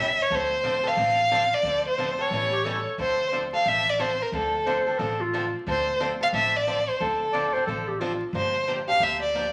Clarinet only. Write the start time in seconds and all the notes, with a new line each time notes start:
2.52 G4
2.65 A4
4.66 C5
4.99 A4
5.21 F4
7.33 D5
7.53 C5
7.67 A4
7.88 G4
8.00 F4